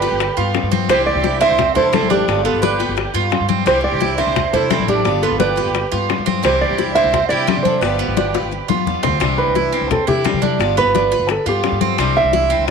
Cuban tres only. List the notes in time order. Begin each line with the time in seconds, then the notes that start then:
0.02 B4
0.37 F4
0.71 C4
0.89 C4
1.24 E4
1.41 C4
1.75 E4
1.93 C4
2.10 D4
2.45 B3
2.63 D4
2.80 B4
3.15 F4
3.49 C4
3.66 C4
4.00 E4
4.18 C4
4.53 E4
4.70 C4
4.88 D4
5.23 B3
5.40 D4
5.57 B4
5.92 F4
6.26 C4
6.43 C4
6.78 E4
6.95 C4
7.30 E4
7.47 C4
7.65 D4
7.99 B3
8.17 D4
8.34 B4
8.68 F4
9.03 C4
9.20 C4
9.55 E4
9.73 C4
10.07 E4
10.24 C4
10.42 D4
10.77 B3
10.95 D4
11.12 B4
11.46 F4
11.81 C4
11.98 C4
12.33 E4
12.50 C4